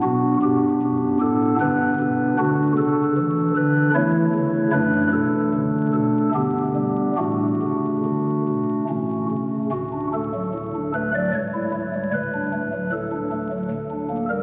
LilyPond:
<<
  \new Staff \with { instrumentName = "Pipe organ" } { \time 3/4 \key d \major \tempo 4 = 76 << { fis'8 g'4 a'8 b'4 | fis'8 a'4 b'8 cis''4 | b'8 a'4 a'8 g'4 | fis'2~ fis'8 r8 |
fis'8 a'4 b'16 d''16 cis''4 | b'4 a'4.~ a'16 bes'16 | } \\ { <b d'>2 <b d'>4 | d'2 <a e'>4 | <a d'>2 <b d'>4 | <a d'>2 <a cis'>4 |
r2. | r2. | } >> }
  \new Staff \with { instrumentName = "Pipe organ" } { \clef bass \time 3/4 \key d \major << { b,8 g,8 fis,8 a,8 g,8 b,8 | d8 cis8 e8 d8 e8 cis8 | fis,8 b,8 d8 b,8 g,8 g8 | a,8 cis8 d8 b,8 a,8 cis8 |
d,16 d'16 a16 fis16 a,16 d'16 a16 fis16 cis,16 e'16 a16 g16 | d,16 d'16 a16 fis16 a,16 d'16 a16 fis16 d,16 d'16 bes16 g16 | } \\ { b,,8 r4. g,,8 r8 | d,8 r4. e,8 r8 | fis,,8 r4. g,,8 r8 | a,,8 r4. a,,8 r8 |
d,,2 cis,,4 | d,,2 d,,4 | } >> }
>>